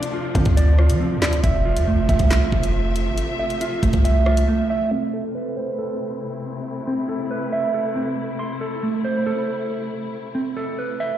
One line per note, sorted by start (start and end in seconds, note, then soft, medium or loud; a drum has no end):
0.00 1.40 C3 medium
0.00 4.88 F3 medium
0.00 1.40 A3 medium
0.00 1.40 D4 medium
0.00 0.12 F4 loud
0.00 0.56 D5 loud
0.00 closed hi-hat medium
0.13 0.77 F4 loud
0.35 0.45 D3 loud
0.35 0.99 C4 medium
0.35 kick loud
0.35 closed hi-hat medium
0.45 0.91 D2 loud
0.45 kick loud
0.45 closed hi-hat medium
0.57 1.21 D5 loud
0.57 closed hi-hat medium
0.79 1.44 F4 medium
0.79 cross-stick medium
0.89 1.18 F3 loud
0.89 closed hi-hat medium
1.00 1.44 C4 medium
1.17 1.42 D2 loud
1.22 1.43 D5 loud
1.22 snare loud
1.22 clap loud
1.33 closed hi-hat medium
1.44 1.78 F1 loud
1.44 4.88 C3 medium
1.44 4.88 A3 medium
1.44 4.88 E5 medium
1.44 2.08 E5 loud
1.44 kick loud
1.44 closed hi-hat medium
1.65 2.29 F4 loud
1.76 1.94 F2 loud
1.76 closed hi-hat medium
1.87 3.18 A3 medium
1.93 2.08 F1 loud
2.09 2.19 F1 loud
2.09 3.38 E5 medium
2.09 kick loud
2.09 closed hi-hat medium
2.19 2.43 C2 loud
2.19 kick loud
2.19 closed hi-hat medium
2.31 3.60 F4 loud
2.31 snare loud
2.31 clap loud
2.31 closed hi-hat medium
2.42 2.52 A1 loud
2.52 3.08 F1 loud
2.52 kick loud
2.63 closed hi-hat medium
2.96 closed hi-hat medium
3.07 3.27 G#1 loud
3.18 closed hi-hat medium
3.39 4.03 E5 medium
3.50 closed hi-hat soft
3.61 4.25 F4 loud
3.61 closed hi-hat medium
3.83 3.93 F1 loud
3.83 4.47 A3 medium
3.83 kick loud
3.83 closed hi-hat medium
3.93 4.46 C2 loud
3.93 kick loud
3.93 closed hi-hat medium
4.05 4.69 E5 loud
4.05 closed hi-hat medium
4.26 4.91 F4 medium
4.26 cross-stick medium
4.37 closed hi-hat medium
4.48 4.92 A3 medium
4.70 4.92 E5 medium
4.91 11.18 C3 medium
4.91 11.18 A3 medium
4.91 6.22 C4 medium
4.91 8.36 C4 medium
4.91 11.18 E4 medium
5.13 5.77 A4 medium
5.35 6.65 B4 medium
5.57 6.87 C5 medium
5.78 7.08 A4 medium
6.87 7.94 C4 medium
7.09 7.73 A4 medium
7.31 8.61 B4 medium
7.53 8.39 E5 medium
7.74 8.60 A4 medium
7.96 9.26 C4 medium
8.39 9.70 C6 loud
8.61 9.25 A4 medium
8.83 10.13 A3 medium
9.04 10.35 C5 medium
9.26 10.55 A4 loud
10.35 11.18 C4 medium
10.57 11.18 A4 medium
10.79 11.18 B4 medium
11.00 11.18 E5 loud